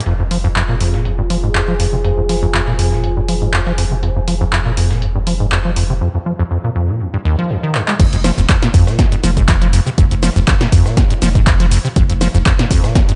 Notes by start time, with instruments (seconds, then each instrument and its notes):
0.00 closed hi-hat
0.06 sub bass F1, acid bass F2, ambient pad F4, closed hi-hat
0.15 ambient pad G#4
0.19 acid bass F2
0.31 acid bass F3, closed hi-hat, open hi-hat
0.44 acid bass F2
0.53 acid bass F2, ambient pad G#5, clap, closed hi-hat
0.59 ambient pad C5
0.69 acid bass A#2
0.81 acid bass F2, closed hi-hat, open hi-hat
0.94 acid bass A#2, snare
1.05 acid bass F2, closed hi-hat
1.19 acid bass G2
1.30 acid bass F3, closed hi-hat, open hi-hat
1.43 acid bass G#2
1.55 acid bass F2, clap, closed hi-hat
1.68 acid bass F3
1.80 acid bass F2, closed hi-hat, open hi-hat
1.93 acid bass C3
2.04 acid bass F2, closed hi-hat
2.18 acid bass F2
2.29 acid bass F3, snare, closed hi-hat, open hi-hat
2.43 acid bass F2
2.54 acid bass F2, clap, closed hi-hat
2.67 acid bass A#2, snare
2.79 acid bass F2, closed hi-hat, open hi-hat
2.92 acid bass A#2, snare
3.04 acid bass F2, closed hi-hat
3.17 acid bass G2
3.28 acid bass F3, closed hi-hat, open hi-hat
3.42 acid bass G#2
3.53 acid bass F2, clap, closed hi-hat
3.67 acid bass F3, snare
3.78 acid bass F2, closed hi-hat, open hi-hat
3.91 acid bass C3
4.03 acid bass F2, closed hi-hat
4.16 acid bass F2
4.28 acid bass F3, closed hi-hat, open hi-hat
4.41 acid bass F2
4.52 acid bass F2, clap, closed hi-hat
4.66 acid bass A#2
4.77 acid bass F2, closed hi-hat, open hi-hat
4.91 acid bass A#2, snare
5.02 acid bass F2, closed hi-hat
5.15 acid bass G2
5.27 acid bass F3, closed hi-hat, open hi-hat
5.40 acid bass G#2
5.52 acid bass F2, clap, closed hi-hat
5.65 acid bass F3
5.76 acid bass F2, open hi-hat
5.90 acid bass C3
6.01 acid bass F2
6.15 acid bass F2
6.26 acid bass F3
6.39 acid bass F2
6.51 acid bass F2
6.64 acid bass A#2
6.76 acid bass F2
6.89 acid bass A#2
7.00 acid bass F2
7.14 acid bass G2
7.25 acid bass D#2
7.38 acid bass F3
7.50 acid bass F2
7.63 acid bass D#3
7.75 acid bass G2, clap
7.88 acid bass G#3, clap
8.00 sub bass F1, acid bass F2, kick, closed hi-hat, crash, cabasa
8.13 acid bass F2, closed hi-hat, cabasa
8.24 acid bass F3, cross-stick, snare, closed hi-hat, open hi-hat, cabasa
8.38 sub bass F1, acid bass F2, cabasa
8.49 acid bass F2, kick, snare, clap, closed hi-hat, cabasa
8.62 acid bass A#2, snare, closed hi-hat, cabasa
8.74 sub bass F2, acid bass F2, kick, closed hi-hat, open hi-hat, cabasa
8.87 acid bass A#2, cross-stick, snare, cabasa
8.99 acid bass F2, kick, snare, closed hi-hat, cabasa
9.12 acid bass G2, closed hi-hat, cabasa
9.24 sub bass F1, acid bass F3, snare, closed hi-hat, open hi-hat, cabasa
9.37 acid bass G#2, kick, closed hi-hat, cabasa
9.48 acid bass F2, kick, cross-stick, snare, clap, closed hi-hat, cabasa
9.62 acid bass F3, closed hi-hat
9.73 acid bass F2, closed hi-hat, open hi-hat, cabasa
9.86 acid bass C3, cabasa
9.98 sub bass F1, acid bass F2, kick, closed hi-hat, cabasa
10.11 acid bass F2, closed hi-hat, cabasa
10.23 acid bass F3, cross-stick, snare, closed hi-hat, open hi-hat, cabasa
10.36 sub bass F1, acid bass F2, cabasa
10.47 acid bass F2, kick, snare, clap, closed hi-hat, cabasa
10.61 acid bass A#2, snare, closed hi-hat, cabasa
10.72 sub bass F2, acid bass F2, kick, closed hi-hat, open hi-hat, cabasa
10.86 acid bass A#2, cross-stick, snare, cabasa
10.97 acid bass F2, kick, snare, closed hi-hat, cabasa
11.10 acid bass G2, closed hi-hat, cabasa
11.22 sub bass F1, acid bass F3, snare, closed hi-hat, open hi-hat, cabasa
11.35 acid bass G#2, kick, closed hi-hat, cabasa
11.47 acid bass F2, kick, cross-stick, snare, clap, closed hi-hat, cabasa
11.60 acid bass F3, snare, closed hi-hat
11.71 acid bass F2, closed hi-hat, open hi-hat, cabasa
11.85 acid bass C3, cabasa
11.96 sub bass F1, acid bass F2, kick, closed hi-hat, cabasa
12.10 acid bass F2, closed hi-hat, cabasa
12.21 acid bass F3, cross-stick, snare, closed hi-hat, open hi-hat, cabasa
12.34 sub bass F1, acid bass F2, cabasa
12.46 acid bass F2, kick, snare, clap, closed hi-hat, cabasa
12.59 acid bass A#2, snare, closed hi-hat, cabasa
12.71 sub bass F2, acid bass F2, kick, closed hi-hat, open hi-hat, cabasa
12.84 acid bass A#2, cross-stick, snare, cabasa
12.95 acid bass F2, kick, snare, closed hi-hat, cabasa
13.09 acid bass G2, closed hi-hat, cabasa